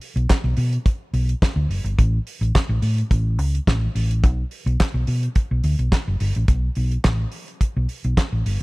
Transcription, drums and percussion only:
0.01 open hi-hat medium
0.17 closed hi-hat soft
0.30 kick loud
0.30 snare loud
0.30 clap loud
0.30 closed hi-hat medium
0.57 open hi-hat medium
0.73 closed hi-hat soft
0.86 kick medium
0.86 closed hi-hat medium
1.14 open hi-hat medium
1.29 closed hi-hat medium
1.42 kick loud
1.42 snare loud
1.42 clap medium
1.42 closed hi-hat medium
1.71 open hi-hat medium
1.86 closed hi-hat soft
1.99 kick loud
1.99 closed hi-hat medium
2.27 open hi-hat medium
2.43 closed hi-hat soft
2.55 kick loud
2.55 snare loud
2.55 clap medium
2.55 closed hi-hat medium
2.82 open hi-hat medium
2.98 closed hi-hat soft
3.11 kick loud
3.11 closed hi-hat medium
3.39 open hi-hat medium
3.55 closed hi-hat soft
3.67 kick medium
3.67 snare loud
3.67 clap medium
3.67 closed hi-hat medium
3.96 open hi-hat medium
4.11 closed hi-hat soft
4.24 kick loud
4.24 closed hi-hat medium
4.51 open hi-hat medium
4.67 closed hi-hat soft
4.80 kick loud
4.80 snare loud
4.80 clap loud
4.80 closed hi-hat medium
5.07 open hi-hat medium
5.23 closed hi-hat soft
5.35 kick loud
5.35 closed hi-hat medium
5.64 open hi-hat medium
5.79 closed hi-hat medium
5.92 kick loud
5.92 snare loud
5.92 clap medium
5.92 closed hi-hat medium
6.20 open hi-hat medium
6.35 closed hi-hat medium
6.48 kick loud
6.48 closed hi-hat medium
6.75 open hi-hat medium
6.91 closed hi-hat soft
7.04 kick loud
7.04 snare loud
7.04 clap medium
7.04 closed hi-hat medium
7.32 open hi-hat medium
7.48 closed hi-hat soft
7.61 kick medium
7.61 closed hi-hat medium
7.89 open hi-hat medium
8.04 closed hi-hat soft
8.17 kick loud
8.17 snare loud
8.17 clap medium
8.17 closed hi-hat medium
8.46 open hi-hat medium

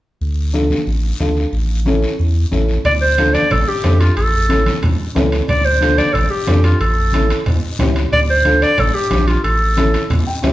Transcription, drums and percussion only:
0.21 long guiro medium
0.54 high conga medium
0.54 short guiro medium
0.70 high conga medium
0.70 short guiro medium
0.87 long guiro medium
1.20 high conga medium
1.20 short guiro medium
1.37 short guiro soft
1.53 long guiro medium
1.86 high conga medium
1.86 short guiro medium
2.02 short guiro medium
2.19 long guiro medium
2.52 high conga medium
2.52 short guiro medium
2.69 short guiro medium
2.85 low conga medium
2.85 high timbale medium
2.85 long guiro medium
3.18 high conga medium
3.18 high timbale medium
3.18 short guiro medium
3.34 high conga medium
3.34 high timbale medium
3.34 short guiro medium
3.51 low conga medium
3.51 high timbale medium
3.51 long guiro medium
3.84 high conga medium
3.84 high timbale medium
3.84 low timbale medium
3.84 short guiro medium
4.00 high timbale medium
4.00 short guiro medium
4.17 high timbale medium
4.17 long guiro medium
4.50 high conga medium
4.50 high timbale medium
4.50 short guiro medium
4.66 high conga medium
4.66 high timbale medium
4.66 short guiro medium
4.83 low conga medium
4.83 high timbale medium
4.83 long guiro medium
5.16 high conga medium
5.16 high timbale medium
5.16 low timbale medium
5.16 short guiro medium
5.32 high timbale medium
5.32 short guiro medium
5.48 low conga medium
5.48 high timbale medium
5.48 long guiro medium
5.81 high conga medium
5.81 high timbale medium
5.81 short guiro medium
5.98 high conga medium
5.98 high timbale medium
5.98 short guiro medium
6.14 low conga medium
6.14 high timbale medium
6.14 long guiro medium
6.47 high conga medium
6.47 high timbale medium
6.47 low timbale medium
6.47 short guiro medium
6.64 high timbale medium
6.64 short guiro medium
6.81 high timbale medium
6.81 long guiro medium
7.12 high conga medium
7.12 high timbale medium
7.12 short guiro medium
7.30 high timbale medium
7.30 short guiro medium
7.46 low conga medium
7.46 high timbale medium
7.46 long guiro medium
7.79 high conga medium
7.79 low conga medium
7.79 high timbale medium
7.79 low timbale medium
7.79 short guiro medium
7.96 high timbale medium
7.96 short guiro medium
8.12 low conga medium
8.12 high timbale medium
8.12 long guiro medium
8.45 high conga medium
8.45 high timbale medium
8.45 short guiro medium
8.62 high timbale medium
8.62 short guiro medium
8.78 low conga medium
8.78 high timbale medium
8.78 long guiro medium
9.11 high conga medium
9.11 low conga medium
9.11 high timbale medium
9.11 low timbale medium
9.11 short guiro medium
9.28 high timbale medium
9.28 short guiro medium
9.44 high timbale medium
9.44 long guiro medium
9.77 high conga medium
9.77 high timbale medium
9.77 short guiro medium
9.94 high timbale medium
9.94 short guiro medium
10.10 low conga medium
10.10 high timbale medium
10.10 long guiro medium
10.43 high conga medium
10.43 high timbale medium
10.43 low timbale medium
10.43 short guiro medium

